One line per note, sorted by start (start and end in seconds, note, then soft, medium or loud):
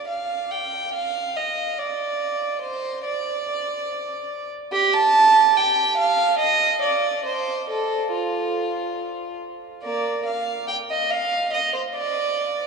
0.08 0.50 F5 medium
0.51 0.94 G5 medium
0.94 1.36 F5 medium
1.36 1.79 D#5 medium
1.79 2.62 D5 medium
2.62 3.03 C5 medium
3.04 4.48 D5 medium
4.72 4.93 G4 medium
4.93 5.56 A5 medium
5.56 5.98 G5 medium
5.97 6.39 F5 medium
6.39 6.81 D#5 medium
6.82 7.25 D5 medium
7.26 7.68 C5 medium
7.70 8.11 A4 medium
8.13 9.39 F4 medium
9.83 10.23 A#3 medium
9.83 10.23 D5 medium
10.26 10.67 F5 medium
10.68 10.76 G5 medium
10.90 11.10 D#5 medium
11.11 11.53 F5 medium
11.53 11.73 D#5 medium
11.74 11.82 C5 medium
11.95 12.67 D5 medium